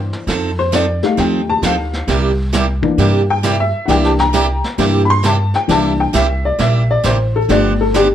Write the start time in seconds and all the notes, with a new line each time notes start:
Already playing: E3 A#3 D4 C5
0.13 snare
0.27 F2 F3 C4 D#4 A4, brush sweep, snare
0.59 C5
0.72 F3 C4 D#4 A4 D5, snare, hi-hat pedal
1.02 G3 A3 D#4 F5, snare
1.17 D#2 F3 C4 D#4 A4 G5, brush sweep, snare
1.49 A5
1.62 D2 F3 C4 D#4 A4 F5, snare, hi-hat pedal
1.93 snare
2.07 C2 C3 G3 A#3 E4 G4, brush sweep, snare
2.53 C3 G3 A#3 E4 G4, snare, hi-hat pedal
2.82 E3 A#3 D4, kick
2.98 G2 C3 G3 A#3 E4 G4, brush sweep, snare
3.30 G5
3.43 C3 G3 A#3 E4 G4, snare, hi-hat pedal
3.60 E5
3.86 C2 C3 E3 G3 A#3 D4 E4 G4 F#5, brush sweep, snare
3.90 G5
4.04 A5, snare
4.19 G5 A#5, snare
4.33 C3 G3 A#3 E4 G4, snare, hi-hat pedal
4.64 snare
4.78 G2 C3 E3 G3 A#3 D4 E4 G4, brush sweep, snare
5.05 B5
5.10 C6
5.23 C3 G3 A#3 E4 G4 A5, snare, hi-hat pedal
5.54 G5, snare
5.68 C2 C3 E3 G3 A#3 D4 E4 G4 A5, brush sweep, snare
6.00 G5
6.13 C2 C3 G3 A#3 E4 G4 E5, snare, hi-hat pedal
6.45 D5
6.59 A#1 C3 G3 A#3 E4 G4 E5, brush sweep, snare
6.91 D5
7.04 A1 C3 G3 A#3 E4 G4 C5, snare, hi-hat pedal
7.36 A4
7.49 G1 D3 F3 A3 B3 D4 G4 D5, brush sweep, snare
7.81 A4
7.94 D3 F3 B3 D4 G4, snare, hi-hat pedal